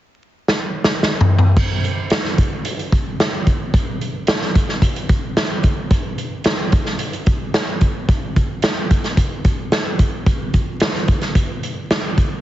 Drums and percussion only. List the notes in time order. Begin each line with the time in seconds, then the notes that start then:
0.48 snare
0.84 snare
1.03 snare
1.21 floor tom
1.39 floor tom
1.57 kick, crash
1.84 closed hi-hat
2.10 snare, closed hi-hat
2.25 snare
2.38 kick, closed hi-hat
2.65 closed hi-hat
2.79 closed hi-hat
2.92 kick, closed hi-hat
3.20 snare, closed hi-hat
3.47 kick, closed hi-hat
3.74 kick, closed hi-hat
4.01 closed hi-hat
4.27 snare, closed hi-hat
4.42 snare
4.55 kick, closed hi-hat
4.69 snare
4.82 kick, closed hi-hat
4.96 closed hi-hat
5.09 kick, closed hi-hat
5.37 snare, closed hi-hat
5.63 kick, closed hi-hat
5.91 kick, closed hi-hat
6.18 closed hi-hat
6.44 snare, closed hi-hat
6.72 kick, closed hi-hat
6.86 snare
6.99 closed hi-hat
7.13 closed hi-hat
7.26 kick, closed hi-hat
7.54 snare, closed hi-hat
7.81 kick, closed hi-hat
8.09 kick, closed hi-hat
8.36 kick, closed hi-hat
8.62 snare, closed hi-hat
8.91 kick, closed hi-hat
9.04 snare, closed hi-hat
9.17 kick, closed hi-hat
9.45 kick, closed hi-hat
9.72 snare, closed hi-hat
9.99 kick, closed hi-hat
10.26 kick, closed hi-hat
10.54 kick, closed hi-hat
10.80 snare, closed hi-hat
10.95 snare
11.08 kick, closed hi-hat
11.22 snare, closed hi-hat
11.35 kick, closed hi-hat
11.63 closed hi-hat
11.91 snare, closed hi-hat
12.18 kick, closed hi-hat